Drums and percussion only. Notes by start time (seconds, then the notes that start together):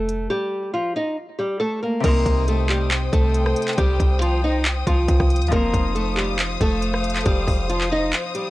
0.09 closed hi-hat
2.04 kick, closed hi-hat, crash
2.26 kick, closed hi-hat
2.48 closed hi-hat
2.69 clap
2.91 clap, closed hi-hat
3.13 kick, closed hi-hat
3.34 closed hi-hat
3.46 cross-stick
3.56 closed hi-hat
3.62 closed hi-hat
3.68 clap, closed hi-hat
3.73 closed hi-hat
3.78 kick, closed hi-hat
4.00 kick, closed hi-hat
4.22 closed hi-hat
4.65 clap, closed hi-hat
4.87 kick, closed hi-hat
5.08 kick, closed hi-hat
5.20 kick, cross-stick
5.30 closed hi-hat
5.36 closed hi-hat
5.42 closed hi-hat
5.47 closed hi-hat
5.52 kick, closed hi-hat
5.74 kick, closed hi-hat
5.96 closed hi-hat
6.17 clap
6.39 clap, closed hi-hat
6.61 kick, closed hi-hat
6.82 closed hi-hat
6.94 cross-stick
7.04 closed hi-hat
7.10 closed hi-hat
7.16 clap, closed hi-hat
7.21 closed hi-hat
7.26 kick, closed hi-hat
7.48 kick, open hi-hat
7.70 closed hi-hat
7.81 clap
8.13 clap, closed hi-hat
8.35 closed hi-hat